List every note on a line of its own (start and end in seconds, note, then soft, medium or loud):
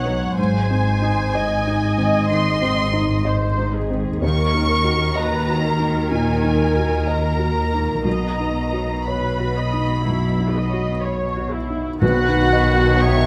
0.00 0.34 B1 soft
0.00 0.41 F#2 soft
0.00 0.34 B2 soft
0.00 0.40 B2 soft
0.00 0.05 B3 soft
0.00 0.41 D#4 soft
0.00 0.69 D#4 soft
0.00 0.42 B4 soft
0.00 0.37 C#5 soft
0.00 0.40 D#5 soft
0.00 1.02 D#5 soft
0.00 0.38 F#5 medium
0.05 0.42 F#3 soft
0.05 0.38 B3 soft
0.37 4.19 G#1 medium
0.37 4.18 G#2 soft
0.37 4.27 G#2 soft
0.37 2.28 G#2 soft
0.37 1.32 C5 medium
0.37 2.28 G#5 medium
0.70 1.22 C4 soft
0.70 1.66 D#4 soft
1.02 1.54 D#4 soft
1.02 2.95 D#5 soft
1.34 3.27 C5 soft
1.34 3.27 D#5 medium
1.34 1.87 D#5 soft
1.67 2.19 D#4 soft
1.67 2.31 D#4 soft
1.98 2.64 D#3 soft
1.98 2.50 C4 soft
2.31 2.82 D#3 soft
2.31 3.60 D#4 soft
2.31 3.28 C6 medium
2.62 3.92 D#3 soft
2.62 3.14 C4 soft
2.93 3.45 D#4 soft
2.93 6.86 D#5 soft
3.25 3.75 C5 medium
3.25 4.27 C5 soft
3.25 3.77 D#5 soft
3.58 4.10 D#4 soft
3.58 7.51 D#4 soft
3.75 4.23 G#4 medium
3.90 4.25 D#3 soft
3.90 4.23 C4 soft
4.22 6.07 D#2 soft
4.22 8.06 D#2 medium
4.22 8.06 D#3 medium
4.22 5.18 A#4 medium
4.22 5.14 C#6 medium
4.26 8.12 D#3 medium
4.54 8.47 C#4 soft
4.54 5.05 D#4 soft
4.84 5.35 F#4 soft
5.16 7.08 F#4 soft
5.16 5.65 B4 medium
5.16 5.67 D#5 soft
5.16 6.12 A#5 medium
5.48 5.99 F#4 soft
5.65 8.02 A#4 medium
5.79 6.43 A#3 soft
5.79 6.31 D#4 soft
6.12 6.63 A#2 soft
6.12 7.06 G#5 medium
6.44 7.73 A#3 soft
6.44 6.95 D#4 soft
6.76 7.27 F#4 soft
7.07 9.38 F#4 soft
7.07 7.60 D#5 soft
7.07 8.05 A#5 medium
7.39 7.92 F#4 soft
7.74 8.11 A#3 soft
7.74 8.07 D#4 soft
8.05 10.00 B1 soft
8.05 11.77 B1 soft
8.05 11.78 B2 soft
8.05 11.97 B2 soft
8.05 8.94 D#5 soft
8.05 9.04 A#5 soft
8.40 12.31 B3 soft
8.40 8.92 D#4 soft
8.73 9.26 F#4 soft
8.73 10.68 C#5 soft
9.04 9.52 B4 soft
9.04 9.59 C#5 soft
9.04 11.03 B5 soft
9.39 11.35 F#4 soft
9.39 9.92 F#4 soft
9.56 10.05 D#5 soft
9.73 10.25 D#4 soft
10.05 10.59 F#2 soft
10.05 13.26 F#3 soft
10.05 10.53 E4 soft
10.40 10.92 D#4 soft
10.54 11.03 D#5 soft
10.69 11.25 F#4 soft
10.69 12.05 C#5 soft
11.02 11.52 C#5 soft
11.02 11.57 C#5 soft
11.36 12.77 F#4 soft
11.36 11.89 F#4 soft
11.52 12.02 E4 soft
11.70 12.02 D#4 soft
12.00 13.26 B1 medium
12.00 13.26 B1 soft
12.00 13.26 B2 medium
12.00 13.26 B2 soft
12.00 13.26 D#3 medium
12.00 13.26 F#3 medium
12.00 13.03 F#4 medium
12.00 13.26 F#4 medium
12.00 13.00 F#4 medium
12.00 12.99 B4 medium
12.00 12.99 F#5 medium
12.29 12.69 D#4 soft
12.53 12.94 D#5 soft
12.78 13.26 F#4 soft
12.78 13.18 F#4 soft
13.01 13.26 C#5 medium
13.01 13.26 E5 medium
13.01 13.26 F#5 soft
13.01 13.26 C#6 medium
13.01 13.26 D#6 soft